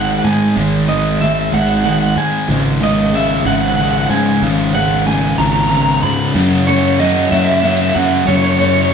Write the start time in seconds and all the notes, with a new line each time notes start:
Already playing: G#1 G#2 D#3 G#3
0.04 F#5
0.11 F#5
0.18 F#5
0.24 G#2 D#3 G#3 G#5
0.56 G#1 G#2 D#3 G#3
0.88 G#2 D#3 G#3 D#5
1.20 G#2 D#3 G#3 E5
1.53 G#1 G#2 D#3 G#3 F#5
1.61 F#5
1.69 F#5
1.76 F#5
1.84 G#2 D#3 G#3 F#5
1.91 F#5
1.99 F#5
2.06 F#5
2.16 G#2 D#3 G#3 G#5
2.49 G#1 C#2 G#2 C#3
2.81 C#2 G#2 C#3 D#5
3.13 C#2 G#2 C#3 E5
3.45 G#1 C#2 G#2 C#3 F#5
3.54 F#5
3.61 F#5
3.68 F#5
3.76 C#2 G#2 C#3 F#5
3.83 F#5
3.91 F#5
3.98 F#5
4.06 C#2 F#5
4.10 G#2 C#3 G#5
4.42 G#1 C#2 G#2 C#3
4.74 C#2 G#2 C#3 F#5
5.06 C#2 G#2 C#3 G#5
5.38 G#1 C#2 G#2 C#3 A#5
5.46 A#5
5.53 A#5
5.61 A#5
5.68 C#2 G#2 C#3 A#5
5.75 A#5
5.82 A#5
5.91 A#5
5.97 A#5
6.03 C#2 G#2 C#3 B5
6.35 F#2 C#3 F#3 A#3 C#4 F#4
6.67 F#3 A#3 C#4 F#4 C#5
6.99 F#3 A#3 C#4 F#4 D#5
7.31 F#2 F#3 A#3 C#4 F#4 E5
7.39 E5
7.45 E5
7.52 E5
7.60 F#3 A#3 E5
7.65 C#4 F#4 E5
7.75 E5
7.82 E5
7.89 E5
7.95 F#2 F#3 A#3 C#4 F#4 F#5
8.26 F#2 C#3 F#3 A#3 C#4 F#4 C#5
8.35 C#5
8.43 C#5
8.50 C#5
8.58 F#3 A#3 C#4 F#4 C#5
8.65 C#5
8.73 C#5
8.81 C#5
8.89 F#3 C#5